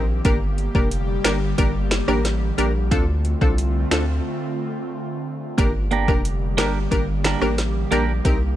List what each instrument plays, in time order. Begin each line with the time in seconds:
Already playing: sub bass A#1, analog synth pad D#3 A#3 C4 G4, downlifter
0.25 sub bass G1, analog synth pad D3 G3 G4, synth stab A#3 D4 G4 A#4, kick, closed hi-hat
0.58 closed hi-hat
0.75 sub bass F1, synth stab A#3 D4 G4 A#4, kick
0.91 closed hi-hat
1.24 sub bass G1, synth stab A#3 D4 G4 A#4, finger snap, snare, closed hi-hat
1.58 sub bass G1, synth stab A#3 D4 G4 A#4, kick, closed hi-hat
1.91 finger snap, snare, closed hi-hat
2.08 sub bass A1, synth stab A#3 D4 G4 A#4, cross-stick
2.25 snare, closed hi-hat
2.58 sub bass A#1, synth stab A#3 D4 G4 A#4, closed hi-hat
2.91 sub bass D2, analog synth pad A3 C4 F4, synth stab C4 D4 F4 A4, kick, closed hi-hat
3.25 closed hi-hat
3.41 sub bass C2, synth stab C4 D4 F4 A4, kick
3.58 closed hi-hat
3.91 sub bass D2, synth stab C4 D4 F4 A4, finger snap, snare, closed hi-hat
5.58 sub bass G1, analog synth pad G3 A#3 G4, synth stab A#3 D4 G4 A#4, kick, closed hi-hat
5.91 clean electric guitar A#3 D4 G4 A#4, closed hi-hat
6.08 sub bass F1, synth stab A#3 D4 G4 A#4, kick
6.25 closed hi-hat
6.57 sub bass G1, clean electric guitar A#3 D4 G4 A#4, synth stab A#3 D4 G4 A#4, finger snap, snare, closed hi-hat
6.91 sub bass G1, synth stab A#3 D4 G4 A#4, kick, closed hi-hat
7.24 clean electric guitar A#3 D4 G4 A#4, finger snap, snare, closed hi-hat
7.41 sub bass A1, synth stab A#3 D4 G4 A#4, muted clean electric guitar stroke, cross-stick
7.58 snare, closed hi-hat
7.91 sub bass A#1, clean electric guitar A#3 D4 G4 A#4, synth stab A#3 D4 G4 A#4, closed hi-hat
8.25 sub bass C2, analog synth pad D#3 C4, synth stab C4 D#4 G4 A#4, kick, closed hi-hat